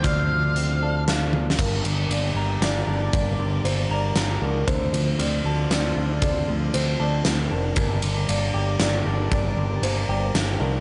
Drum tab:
CC |------------------|x-----------------|------------------|------------------|
RD |------------------|---x--x-----x-----|x-----x-----x-----|x--x--x-----x-----|
HH |x-----x-----x-----|------------------|------------------|------------------|
SD |------------o----o|------------o-----|------------o-----|------------o-----|
T1 |---------------o--|------------------|------------------|------------------|
BD |o-----------------|o-----------------|o-----------------|o-----------------|

CC |------------------|------------------|------------------|
RD |x-----x-----x-----|x--x--x-----x-----|x-----x-----x-----|
HH |------------------|------------------|------------------|
SD |------------o-----|------------o-----|------------o-----|
T1 |------------------|------------------|------------------|
BD |o-----------------|o-----------------|o-----------------|